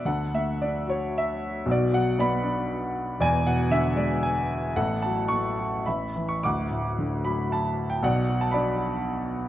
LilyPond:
<<
  \new Staff \with { instrumentName = "Grand piano" } { \time 3/4 \key d \major \tempo 4 = 114 << { fis''8 e''8 d''8 cis''8 e''4 | d''8 fis''8 b''4. r8 | gis''8 fis''8 e''8 d''8 gis''4 | fis''8 a''8 cis'''4 b''8. cis'''16 |
d'''4. b''8 a''8. g''16 | fis''8. a''16 b''4. r8 | } \\ { a'4. r4. | fis'4 d''4. r8 | d''4. r4. | a'4. r8 e''4 |
fis''4. r4. | d''4 d''4. r8 | } >> }
  \new Staff \with { instrumentName = "Grand piano" } { \clef bass \time 3/4 \key d \major <d, d>8 a8 d'8 fis'4. | <b,, b,>8 fis8 b8 d'4. | <e,, e,>8 b,8 d8 gis4. | <a,, a,>8 fis8 a8 fis'8 <a,, a,>8 e8 |
<d,, d,>8 a,8 d8 fis4. | <b,, b,>8 fis8 d'8 fis'4. | }
>>